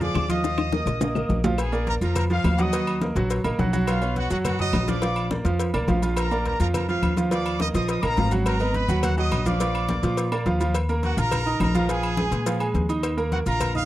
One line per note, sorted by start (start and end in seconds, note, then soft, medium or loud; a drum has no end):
0.00 0.12 F2 medium
0.00 0.24 F3 medium
0.00 0.24 F4 medium
0.00 0.24 G#4 medium
0.00 0.28 D5 medium
0.00 0.28 D6 medium
0.00 high bongo soft
0.00 high conga soft
0.00 low conga medium
0.00 maracas soft
0.14 0.81 D#2 medium
0.14 high bongo soft
0.14 low bongo medium
0.14 high conga medium
0.14 high timbale medium
0.14 claves medium
0.14 maracas soft
0.29 0.41 F3 medium
0.29 0.41 F4 medium
0.29 1.41 D#5 loud
0.29 0.41 F5 medium
0.29 1.41 D#6 medium
0.29 high conga medium
0.29 high timbale medium
0.29 maracas medium
0.44 0.67 F3 medium
0.44 0.67 F4 medium
0.44 0.67 F5 medium
0.44 high bongo medium
0.44 high conga soft
0.44 maracas medium
0.58 high bongo medium
0.58 high conga soft
0.58 high timbale medium
0.58 claves medium
0.58 maracas soft
0.72 0.96 A#3 medium
0.72 0.96 A#4 medium
0.72 0.96 D#5 medium
0.72 high bongo loud
0.72 high conga loud
0.72 maracas soft
0.86 1.26 A#1 medium
0.86 low bongo medium
0.86 high conga soft
0.86 high timbale medium
0.86 maracas medium
1.01 1.13 A#3 medium
1.01 1.13 A#4 medium
1.01 1.13 D#5 medium
1.01 low bongo loud
1.01 high timbale medium
1.01 maracas loud
1.15 1.39 A#3 medium
1.15 1.39 A#4 medium
1.15 1.39 D#5 medium
1.15 low bongo medium
1.15 high conga soft
1.15 claves medium
1.15 maracas soft
1.29 1.96 A#1 medium
1.29 low bongo medium
1.29 high conga medium
1.29 low timbale medium
1.29 maracas soft
1.44 1.56 F3 medium
1.44 1.56 F4 medium
1.44 1.56 F5 medium
1.44 low bongo medium
1.44 high conga medium
1.44 low timbale loud
1.44 maracas medium
1.58 1.85 G#4 medium
1.58 1.86 G#5 medium
1.58 cowbell loud
1.58 high conga soft
1.58 low agogo loud
1.58 claves medium
1.58 maracas medium
1.72 1.96 A#3 medium
1.72 1.96 A#4 medium
1.72 1.96 D5 medium
1.72 high conga soft
1.72 low agogo medium
1.72 maracas soft
1.87 1.94 A#4 loud
1.87 1.95 A#5 medium
1.87 cowbell medium
1.87 high conga medium
1.87 maracas soft
2.01 2.41 F2 medium
2.01 2.25 F3 medium
2.01 2.25 F4 medium
2.01 2.15 A#4 medium
2.01 2.25 F5 medium
2.01 2.16 A#5 medium
2.01 high conga soft
2.01 low agogo medium
2.01 maracas medium
2.15 2.23 A#4 medium
2.15 2.24 A#5 medium
2.15 cowbell loud
2.15 high conga soft
2.15 low conga medium
2.15 low agogo loud
2.15 claves medium
2.15 maracas medium
2.30 2.54 F3 medium
2.30 2.54 F4 medium
2.30 2.54 F5 medium
2.30 2.58 F5 loud
2.30 high conga soft
2.30 maracas soft
2.44 3.10 D#2 medium
2.44 cowbell medium
2.44 high conga medium
2.44 low timbale medium
2.44 low agogo loud
2.44 claves medium
2.44 maracas soft
2.58 2.70 F#3 medium
2.58 2.70 F#4 medium
2.58 3.02 D#5 medium
2.58 2.70 F#5 medium
2.58 3.03 D#6 medium
2.58 cowbell medium
2.58 high conga medium
2.58 maracas medium
2.73 2.96 F#3 medium
2.73 2.97 F#4 medium
2.73 2.97 F#5 medium
2.73 cowbell loud
2.73 high conga soft
2.73 low agogo medium
2.73 maracas medium
2.87 high conga soft
2.87 low agogo medium
2.87 claves medium
2.87 maracas soft
3.01 3.13 A#3 medium
3.01 3.13 A#4 medium
3.01 3.14 D#5 medium
3.01 cowbell medium
3.01 high conga loud
3.01 maracas soft
3.15 3.42 A#1 medium
3.15 3.39 F#3 medium
3.15 3.40 F#4 medium
3.15 3.40 F#5 medium
3.15 cowbell medium
3.15 high conga soft
3.15 maracas medium
3.30 cowbell loud
3.30 high conga soft
3.30 low agogo medium
3.30 maracas medium
3.44 3.58 A#1 medium
3.44 3.56 A#3 medium
3.44 3.56 A#4 medium
3.44 3.57 D#5 medium
3.44 high conga soft
3.44 low agogo loud
3.44 claves medium
3.44 maracas soft
3.59 4.25 B1 medium
3.59 3.71 F#3 medium
3.59 3.71 F#4 medium
3.59 3.71 F#5 medium
3.59 cowbell medium
3.59 high conga medium
3.59 maracas soft
3.73 3.97 F#3 medium
3.73 3.97 F#4 medium
3.73 3.97 F#5 loud
3.73 high conga medium
3.73 low agogo medium
3.73 maracas medium
3.87 4.14 F4 medium
3.87 4.15 F5 medium
3.87 cowbell loud
3.87 low agogo loud
3.87 claves medium
3.87 maracas medium
4.01 4.25 B3 medium
4.01 4.25 B4 medium
4.01 4.25 C#5 medium
4.01 high conga soft
4.01 low agogo medium
4.01 maracas soft
4.16 4.30 F#4 medium
4.16 4.30 F#5 medium
4.16 cowbell medium
4.16 high conga medium
4.16 maracas soft
4.30 4.71 F#2 medium
4.30 4.54 F#3 medium
4.30 4.54 F#4 medium
4.30 4.37 F#4 medium
4.30 4.54 F#5 medium
4.30 4.38 F#5 medium
4.30 high conga soft
4.30 low agogo medium
4.30 maracas medium
4.44 4.59 F#4 medium
4.44 4.59 F#5 medium
4.44 cowbell loud
4.44 high conga soft
4.44 low conga medium
4.44 low agogo medium
4.44 claves medium
4.44 maracas medium
4.59 4.83 F#3 medium
4.59 4.83 F#4 medium
4.59 4.86 D#5 loud
4.59 4.83 F#5 medium
4.59 4.86 D#6 medium
4.59 high conga soft
4.59 low conga medium
4.59 maracas soft
4.73 5.40 A#1 medium
4.73 cowbell medium
4.73 high conga medium
4.73 low timbale medium
4.73 low agogo loud
4.73 claves medium
4.73 maracas soft
4.88 5.00 F3 medium
4.88 5.00 F4 medium
4.88 5.31 D5 medium
4.88 5.00 F5 medium
4.88 5.31 D6 medium
4.88 cowbell medium
4.88 high conga medium
4.88 maracas medium
5.02 5.26 F3 medium
5.02 5.26 F4 medium
5.02 5.26 F5 medium
5.02 cowbell loud
5.02 high conga soft
5.02 low agogo medium
5.02 maracas medium
5.16 high conga soft
5.16 low agogo medium
5.16 claves medium
5.16 maracas soft
5.31 5.43 A#3 medium
5.31 5.43 A#4 medium
5.31 5.43 D5 medium
5.31 cowbell medium
5.31 high conga loud
5.31 maracas soft
5.45 5.72 F2 medium
5.45 5.68 F3 medium
5.45 5.69 F4 medium
5.45 5.69 F5 medium
5.45 cowbell medium
5.45 high conga soft
5.45 maracas medium
5.59 cowbell loud
5.59 high conga soft
5.59 low agogo medium
5.59 maracas loud
5.74 5.87 B1 medium
5.74 5.85 A#3 medium
5.74 5.86 A#4 medium
5.74 5.86 D5 medium
5.74 high conga soft
5.74 low agogo loud
5.74 claves medium
5.74 maracas soft
5.88 6.54 A#1 medium
5.88 6.00 F3 medium
5.88 6.00 F4 medium
5.88 6.00 F5 loud
5.88 cowbell medium
5.88 high conga medium
5.88 low timbale medium
5.88 maracas soft
6.02 6.26 F3 medium
6.02 6.26 F4 medium
6.02 6.26 F5 medium
6.02 low agogo medium
6.02 maracas medium
6.17 6.44 A#4 medium
6.17 6.44 A#5 medium
6.17 cowbell loud
6.17 high conga soft
6.17 low agogo loud
6.17 claves medium
6.17 maracas medium
6.31 6.55 A#3 medium
6.31 6.55 A#4 medium
6.31 6.55 D5 medium
6.31 high conga soft
6.31 low agogo medium
6.31 maracas soft
6.45 6.59 A#4 medium
6.45 6.60 A#5 medium
6.45 cowbell medium
6.45 high conga medium
6.45 maracas soft
6.60 7.00 F2 medium
6.60 6.84 F3 medium
6.60 6.83 F4 medium
6.60 6.67 A#4 medium
6.60 6.84 F5 medium
6.60 6.68 A#5 medium
6.60 high conga soft
6.60 low agogo medium
6.60 maracas medium
6.74 6.88 A#4 medium
6.74 6.88 A#5 medium
6.74 cowbell loud
6.74 high conga soft
6.74 low conga medium
6.74 low agogo loud
6.74 claves medium
6.74 maracas loud
6.88 7.12 F3 medium
6.88 7.12 F4 medium
6.88 7.16 F5 loud
6.88 7.12 F5 medium
6.88 high conga soft
6.88 maracas soft
7.02 7.69 D#2 medium
7.02 cowbell medium
7.02 high conga medium
7.02 low agogo loud
7.02 claves medium
7.02 maracas soft
7.17 7.29 F3 medium
7.17 7.29 F4 medium
7.17 7.29 F5 medium
7.17 cowbell medium
7.17 high conga medium
7.17 maracas medium
7.31 7.55 F3 medium
7.31 7.55 F4 medium
7.31 7.58 D5 medium
7.31 7.55 F5 medium
7.31 7.59 D6 medium
7.31 cowbell loud
7.31 high conga soft
7.31 low agogo medium
7.31 maracas medium
7.46 high conga soft
7.46 low agogo loud
7.46 claves medium
7.46 maracas soft
7.60 7.72 A#3 medium
7.60 7.72 A#4 medium
7.60 7.66 D#5 loud
7.60 7.72 D#5 medium
7.60 7.67 D#6 medium
7.60 cowbell medium
7.60 high conga loud
7.60 maracas soft
7.74 8.01 A#1 medium
7.74 7.98 F3 medium
7.74 7.98 F4 medium
7.74 7.87 D#5 medium
7.74 7.98 F5 medium
7.74 7.88 D#6 medium
7.74 cowbell medium
7.74 high conga soft
7.74 maracas medium
7.88 8.02 D#5 medium
7.88 8.03 D#6 medium
7.88 cowbell loud
7.88 high conga soft
7.88 low agogo medium
7.88 maracas medium
8.03 8.16 A#1 medium
8.03 8.15 A#3 medium
8.03 8.15 A#4 medium
8.03 8.32 A#4 medium
8.03 8.15 D#5 medium
8.03 8.32 A#5 loud
8.03 high conga soft
8.03 low agogo loud
8.03 claves medium
8.03 maracas soft
8.17 8.83 G#1 medium
8.17 8.29 F3 medium
8.17 8.29 F4 medium
8.17 8.30 F5 medium
8.17 cowbell medium
8.17 high conga medium
8.17 low timbale medium
8.17 maracas soft
8.31 8.55 F#3 medium
8.31 8.55 F#4 medium
8.31 8.55 F#5 medium
8.31 high conga medium
8.31 low agogo medium
8.31 maracas medium
8.46 8.72 A#4 loud
8.46 8.73 A#5 medium
8.46 cowbell loud
8.46 high conga soft
8.46 low agogo loud
8.46 claves medium
8.46 maracas medium
8.60 8.84 B3 medium
8.60 8.84 B4 medium
8.60 8.84 D#5 medium
8.60 high conga soft
8.60 low agogo medium
8.60 maracas soft
8.74 9.03 B4 medium
8.74 9.04 B5 medium
8.74 cowbell medium
8.74 high conga medium
8.74 maracas soft
8.88 9.28 D#2 medium
8.88 9.12 F#3 medium
8.88 9.12 F#4 medium
8.88 9.13 F#5 medium
8.88 high conga soft
8.88 low agogo medium
8.88 maracas medium
9.03 9.17 F#4 medium
9.03 9.17 F#5 medium
9.03 cowbell loud
9.03 high conga soft
9.03 low conga medium
9.03 low agogo medium
9.03 claves medium
9.03 maracas loud
9.17 9.41 F#3 medium
9.17 9.41 F#4 medium
9.17 9.44 D#5 loud
9.17 9.41 F#5 medium
9.17 9.45 D#6 medium
9.17 high conga soft
9.17 maracas soft
9.31 9.98 A#1 medium
9.31 cowbell medium
9.31 high conga medium
9.31 low agogo loud
9.31 claves medium
9.31 maracas soft
9.46 9.58 F3 medium
9.46 9.58 F4 medium
9.46 10.42 D5 medium
9.46 9.58 F5 medium
9.46 10.43 D6 medium
9.46 cowbell medium
9.46 high conga medium
9.46 maracas medium
9.60 9.84 F3 medium
9.60 9.84 F4 medium
9.60 9.84 F5 medium
9.60 cowbell loud
9.60 high conga soft
9.60 low agogo medium
9.60 maracas medium
9.75 high conga soft
9.75 low agogo loud
9.75 claves medium
9.75 maracas soft
9.89 10.01 A#3 medium
9.89 10.01 A#4 medium
9.89 10.01 D5 medium
9.89 cowbell medium
9.89 high conga loud
9.89 maracas soft
10.03 10.43 A#2 medium
10.03 10.27 F3 medium
10.03 10.27 F4 medium
10.03 10.27 F5 medium
10.03 cowbell medium
10.03 high conga soft
10.03 maracas medium
10.17 cowbell loud
10.17 high conga soft
10.17 low agogo medium
10.17 maracas medium
10.32 10.44 A#3 medium
10.32 10.44 A#4 medium
10.32 10.44 D5 medium
10.32 high conga soft
10.32 low agogo loud
10.32 claves medium
10.32 maracas soft
10.46 11.12 D#2 medium
10.46 10.58 F3 medium
10.46 10.58 F4 medium
10.46 10.58 F5 medium
10.46 cowbell medium
10.46 high conga medium
10.46 maracas soft
10.60 10.72 F3 medium
10.60 10.72 F4 medium
10.60 10.73 F5 medium
10.60 low agogo medium
10.60 maracas medium
10.74 cowbell loud
10.74 high conga soft
10.74 low agogo loud
10.74 claves medium
10.74 maracas medium
10.89 11.13 A#3 medium
10.89 11.13 A#4 medium
10.89 11.13 A#5 medium
10.89 high conga soft
10.89 low agogo medium
10.89 maracas soft
11.03 11.17 F#4 loud
11.03 11.18 F#5 medium
11.03 cowbell medium
11.03 high conga medium
11.03 maracas soft
11.17 11.57 A#1 medium
11.17 11.41 F4 medium
11.17 11.60 A#4 loud
11.17 11.41 F5 medium
11.17 11.61 A#5 medium
11.17 11.41 F6 medium
11.17 high conga soft
11.17 low agogo medium
11.17 maracas medium
11.31 cowbell loud
11.31 high conga soft
11.31 low conga medium
11.31 low agogo loud
11.31 claves medium
11.31 maracas medium
11.46 11.70 D#4 medium
11.46 11.70 D#5 medium
11.46 11.70 D#6 medium
11.46 high conga soft
11.46 maracas soft
11.60 12.26 A#1 medium
11.60 11.87 A#4 loud
11.60 11.88 A#5 medium
11.60 cowbell medium
11.60 high conga medium
11.60 low timbale medium
11.60 low agogo loud
11.60 claves medium
11.60 maracas soft
11.75 11.86 F3 medium
11.75 11.87 F4 loud
11.75 11.87 F5 loud
11.75 cowbell medium
11.75 high conga medium
11.75 maracas medium
11.89 12.12 F3 medium
11.89 12.12 F4 medium
11.89 12.75 G#4 medium
11.89 12.13 F5 medium
11.89 12.76 G#5 medium
11.89 cowbell loud
11.89 low agogo medium
11.89 maracas medium
12.03 high conga soft
12.03 low agogo loud
12.03 claves medium
12.03 maracas soft
12.17 12.41 G#3 medium
12.17 12.41 G#4 medium
12.17 12.41 G#5 medium
12.17 cowbell medium
12.17 high conga loud
12.17 maracas soft
12.31 12.71 A#2 medium
12.31 cowbell medium
12.31 high conga soft
12.31 maracas medium
12.46 12.58 F3 medium
12.46 12.58 F4 medium
12.46 12.58 F5 medium
12.46 cowbell loud
12.46 high conga soft
12.46 low agogo medium
12.46 maracas loud
12.60 12.84 G#3 medium
12.60 12.84 G#4 medium
12.60 12.84 G#5 medium
12.60 high conga soft
12.60 low agogo loud
12.60 claves medium
12.60 maracas soft
12.74 13.41 D#2 medium
12.74 cowbell medium
12.74 high conga medium
12.74 maracas soft
12.89 13.13 D#4 medium
12.89 13.13 D#5 medium
12.89 13.13 D#6 medium
12.89 low agogo medium
12.89 maracas medium
13.03 cowbell loud
13.03 high conga soft
13.03 low agogo loud
13.03 claves medium
13.03 maracas medium
13.17 13.41 A#3 medium
13.17 13.41 A#4 medium
13.17 13.41 A#5 medium
13.17 high conga soft
13.17 low agogo medium
13.17 maracas soft
13.32 13.39 F#4 medium
13.32 13.39 F#5 medium
13.32 cowbell medium
13.32 high conga medium
13.32 maracas soft
13.46 13.85 A#1 medium
13.46 13.70 F4 medium
13.46 13.73 A#4 loud
13.46 13.70 F5 medium
13.46 13.74 A#5 medium
13.46 13.70 F6 medium
13.46 high conga soft
13.46 low agogo medium
13.46 maracas medium
13.60 cowbell loud
13.60 high conga soft
13.60 low conga medium
13.60 low agogo loud
13.60 claves medium
13.60 maracas medium
13.75 13.85 D#4 medium
13.75 13.85 D#5 medium
13.75 13.85 F5 loud
13.75 13.85 D#6 medium
13.75 high conga soft
13.75 low conga medium
13.75 maracas soft